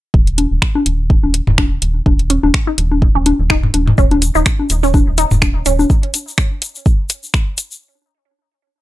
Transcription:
0.14 0.46 D#1 medium
0.14 kick loud
0.27 closed hi-hat soft
0.38 closed hi-hat medium
0.38 high conga soft
0.51 0.59 D#1 medium
0.62 finger snap medium
0.62 kick loud
0.75 high conga medium
0.86 1.18 D#1 medium
0.86 closed hi-hat medium
1.10 kick loud
1.23 1.41 D#1 medium
1.23 high conga soft
1.34 closed hi-hat medium
1.47 1.78 D#1 medium
1.47 mid tom medium
1.58 finger snap medium
1.58 kick loud
1.58 high conga medium
1.82 2.01 D#1 medium
1.82 closed hi-hat medium
2.06 2.38 D#1 loud
2.06 kick loud
2.06 high conga soft
2.19 closed hi-hat soft
2.30 2.32 C#4 medium
2.30 closed hi-hat medium
2.43 2.51 D#1 medium
2.43 high conga medium
2.54 finger snap medium
2.54 kick loud
2.67 2.70 D#4 medium
2.78 3.10 D#1 medium
2.78 closed hi-hat medium
2.91 high conga soft
3.02 kick loud
3.15 3.33 D#1 medium
3.15 3.17 C#4 medium
3.26 closed hi-hat medium
3.26 high conga medium
3.39 3.70 D#1 medium
3.50 3.54 D#4 medium
3.50 finger snap medium
3.50 kick loud
3.63 mid tom medium
3.74 3.93 D#1 medium
3.74 closed hi-hat medium
3.74 high conga soft
3.88 mid tom medium
3.98 4.30 D#1 loud
3.98 4.00 C#4 medium
3.98 kick loud
3.98 shaker soft
4.11 closed hi-hat soft
4.11 high conga medium
4.22 closed hi-hat medium
4.22 shaker medium
4.35 4.43 D#1 medium
4.35 4.38 D#4 medium
4.35 shaker medium
4.46 finger snap medium
4.46 kick loud
4.46 shaker soft
4.59 high conga soft
4.70 5.02 D#1 medium
4.70 closed hi-hat medium
4.70 shaker medium
4.83 4.85 C#4 medium
4.83 shaker soft
4.94 kick loud
4.94 high conga medium
4.94 shaker soft
5.07 5.25 D#1 medium
5.18 5.22 D#4 medium
5.18 closed hi-hat medium
5.18 shaker medium
5.31 5.62 D#1 medium
5.31 mid tom medium
5.31 shaker medium
5.42 finger snap medium
5.42 kick loud
5.42 high conga soft
5.42 shaker soft
5.66 5.85 D#1 medium
5.66 5.68 C#4 medium
5.66 closed hi-hat medium
5.66 shaker medium
5.79 high conga medium
5.79 shaker medium
5.90 kick loud
5.90 shaker soft
6.03 closed hi-hat soft
6.14 closed hi-hat medium
6.14 shaker loud
6.28 shaker medium
6.38 finger snap medium
6.38 kick loud
6.38 shaker soft
6.62 closed hi-hat medium
6.62 shaker medium
6.75 shaker soft
6.86 kick loud
6.86 shaker soft
7.09 closed hi-hat medium
7.09 shaker medium
7.23 shaker medium
7.34 finger snap medium
7.34 kick loud
7.34 shaker soft
7.58 closed hi-hat medium
7.58 shaker loud
7.71 shaker medium

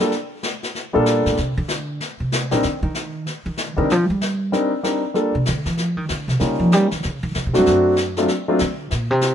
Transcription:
0.00 0.11 G3 medium
0.00 0.11 A#3 soft
0.00 0.11 D4 soft
0.00 0.11 F4 soft
0.00 0.11 A4 medium
0.11 brush sweep soft
0.11 snare soft
0.43 snare medium
0.63 snare soft
0.75 brush sweep soft
0.75 snare soft
0.93 1.24 A#2 medium
0.93 1.35 G3 medium
0.93 1.35 A#3 medium
0.93 1.35 D4 medium
0.93 1.35 F4 medium
0.93 1.35 A4 medium
1.06 snare medium
1.26 1.37 A2 medium
1.26 snare soft
1.37 1.57 C3 medium
1.37 brush sweep medium
1.37 snare soft
1.57 1.98 D3 medium
1.68 snare medium
2.00 brush sweep soft
2.00 snare soft
2.20 2.49 C3 medium
2.32 snare medium
2.51 2.63 A#2 medium
2.51 2.62 G3 soft
2.51 2.62 C4 medium
2.51 2.62 D4 soft
2.51 2.62 D#4 soft
2.51 2.63 A#4 medium
2.51 snare soft
2.63 2.82 D3 medium
2.63 brush sweep soft
2.63 snare soft
2.83 3.23 D#3 medium
2.95 snare medium
3.26 brush sweep soft
3.26 snare soft
3.46 3.75 D#3 medium
3.57 snare medium
3.76 3.92 D3 medium
3.76 3.88 G3 medium
3.76 3.88 C4 soft
3.76 3.88 D4 medium
3.76 3.88 D#4 medium
3.76 3.88 A#4 medium
3.90 4.09 F3 medium
3.90 brush sweep soft
3.90 snare soft
4.10 4.50 G3 medium
4.21 snare medium
4.52 4.70 G3 medium
4.52 4.70 C4 soft
4.52 4.70 D4 soft
4.52 4.70 D#4 soft
4.52 4.70 A#4 medium
4.52 brush sweep soft
4.52 snare soft
4.83 5.01 G3 soft
4.83 5.01 C4 soft
4.83 5.01 D4 soft
4.83 5.01 D#4 soft
4.83 5.01 A#4 soft
4.83 snare medium
5.14 5.32 G3 soft
5.14 5.32 A#3 soft
5.14 5.32 D4 soft
5.14 5.32 F4 soft
5.14 5.33 A4 medium
5.14 brush sweep soft
5.14 snare soft
5.35 5.46 C3 medium
5.46 5.65 D3 medium
5.46 snare medium
5.65 5.79 E3 medium
5.65 snare soft
5.77 5.97 F3 medium
5.77 brush sweep medium
5.77 snare soft
5.97 6.08 D#3 medium
6.09 6.27 D3 medium
6.09 snare medium
6.28 6.39 C3 medium
6.28 snare soft
6.40 6.59 C#3 medium
6.40 6.87 G3 soft
6.40 6.87 A#3 soft
6.40 6.87 C#4 soft
6.40 6.87 D#4 soft
6.40 6.88 F4 soft
6.40 brush sweep medium
6.40 snare soft
6.59 6.73 F3 medium
6.72 6.91 G3 medium
6.72 snare medium
6.91 7.03 D#3 medium
6.91 snare soft
7.03 7.22 C#3 medium
7.03 brush sweep soft
7.03 snare soft
7.23 7.34 D#3 medium
7.35 7.45 C#3 medium
7.35 snare medium
7.47 7.56 C3 medium
7.53 7.66 G2 medium
7.53 7.94 F#3 medium
7.53 7.94 A3 soft
7.53 7.95 C4 medium
7.53 7.95 D4 medium
7.53 7.95 F#4 medium
7.53 snare soft
7.66 8.25 F#2 medium
7.66 brush sweep soft
7.66 snare soft
7.96 snare medium
8.17 8.27 F#3 medium
8.17 8.28 A3 medium
8.17 8.28 C4 soft
8.17 8.28 D4 soft
8.17 8.28 F4 medium
8.17 snare soft
8.28 brush sweep soft
8.28 snare soft
8.48 8.59 F#3 medium
8.48 8.59 A3 medium
8.48 8.59 C4 medium
8.48 8.59 D4 medium
8.48 8.59 F4 medium
8.59 8.90 D3 medium
8.59 snare medium
8.91 9.11 A#2 medium
8.91 brush sweep soft
8.91 snare soft
9.11 9.35 C3 medium
9.21 snare medium

